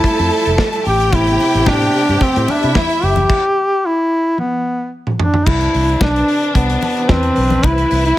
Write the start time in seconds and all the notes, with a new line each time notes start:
Already playing: F3 G3 A3 E4 A4 A5
0.04 kick, closed hi-hat
0.19 F2, closed hi-hat
0.31 open hi-hat
0.46 F1, closed hi-hat
0.58 kick, snare
0.73 closed hi-hat
0.85 A1 C3 B3 G4 G5, open hi-hat
1.00 closed hi-hat
1.12 E4, kick, closed hi-hat, muted conga
1.27 closed hi-hat
1.40 open hi-hat, muted conga
1.55 A1, closed hi-hat
1.66 A2 D4, kick, snare, high conga
1.82 closed hi-hat
1.94 open hi-hat
2.09 G2, closed hi-hat
2.21 C4, muted fingered electric bass stroke, kick, closed hi-hat, muted conga
2.36 A2, closed hi-hat
2.48 D4 E4 E5, open hi-hat, muted conga
2.63 C3, closed hi-hat
2.75 E4, kick, snare, high conga
2.90 closed hi-hat
3.02 F#1 G4, open hi-hat
3.16 closed hi-hat, high conga
3.29 kick, crash
3.86 E4
4.38 B3, high tom
5.07 mid tom
5.19 D4, floor tom
5.34 floor tom
5.46 C2 C3 E3 D4 E4 B4, kick, crash, muted conga
5.61 closed hi-hat
5.74 C2, open hi-hat
5.89 closed hi-hat
6.01 B1 D4, kick, snare, high conga
6.16 closed hi-hat
6.28 open hi-hat
6.43 closed hi-hat
6.55 C2 B3, kick, closed hi-hat, muted conga
6.70 closed hi-hat
6.81 open hi-hat, muted conga
6.97 closed hi-hat
7.09 E2 C4, kick, snare, high conga
7.23 closed hi-hat
7.36 B1, open hi-hat
7.50 closed hi-hat, high conga
7.63 C2 E4, kick, closed hi-hat, muted conga
7.78 closed hi-hat
7.91 C2, open hi-hat
8.06 E4, closed hi-hat